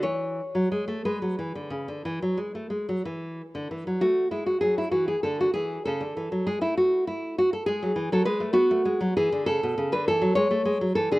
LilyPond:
\new Staff \with { instrumentName = "Nylon-string guitar" } { \clef bass \time 12/8 \key a \major \tempo 4. = 65 << { cis''4. b'2. r4. | fis'8 e'16 fis'16 gis'16 e'16 fis'16 gis'16 a'16 fis'16 gis'8 a'4 gis'16 e'16 fis'8 e'8 fis'16 a'16 | gis'8. a'16 b'8 fis'4 gis'8 a'8. b'16 a'8 cis''4 a'16 gis'16 | } \\ { e8. fis16 gis16 a16 gis16 fis16 e16 d16 cis16 d16 e16 fis16 gis16 a16 gis16 fis16 e8. d16 e16 fis16 | a8 gis8 fis8 e8 d8 e8 cis16 d16 e16 fis16 gis16 a4.~ a16 | gis16 fis16 e16 fis16 gis16 a16 b16 a16 gis16 fis16 e16 d16 cis16 b,16 cis16 d16 e16 fis16 gis16 a16 gis16 fis16 e16 d16 | } >> }